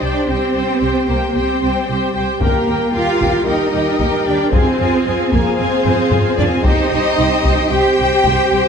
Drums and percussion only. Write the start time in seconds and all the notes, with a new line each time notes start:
2.41 taiko
3.21 taiko
3.99 taiko
4.53 taiko
5.32 taiko
5.85 taiko low-mid
6.11 taiko low-mid
6.38 taiko low
6.65 taiko
7.44 taiko
8.24 taiko